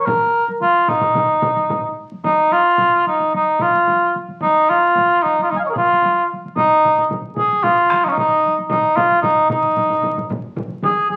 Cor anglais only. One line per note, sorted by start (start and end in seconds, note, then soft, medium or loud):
0.05 0.47 A#4 loud
0.62 0.90 F4 medium
0.89 1.98 D#4 medium
2.25 2.54 D#4 medium
2.52 3.07 F4 medium
3.08 3.32 D#4 medium
3.36 3.64 D#4 medium
3.62 4.15 F4 medium
4.42 4.71 D#4 medium
4.70 5.24 F4 medium
5.23 5.42 D#4 medium
5.43 5.52 F4 medium
5.51 5.56 D#4 medium
5.56 5.63 F5 soft
5.56 5.58 G#5 soft
5.64 5.69 C#5 soft
5.64 5.66 D#5 soft
5.69 5.77 G#4 medium
5.69 5.72 A#4 soft
5.77 6.27 F4 medium
6.57 7.07 D#4 loud
7.37 7.65 G#4 medium
7.64 8.06 F4 medium
8.04 8.13 C#4 medium
8.04 8.10 D#4 medium
8.11 8.18 D#4 medium
8.19 8.56 D#4 medium
8.70 8.98 D#4 medium
8.96 9.21 F4 medium
9.22 9.48 D#4 medium
9.50 10.26 D#4 medium
10.84 11.09 G#4 medium
11.10 11.16 G#4 medium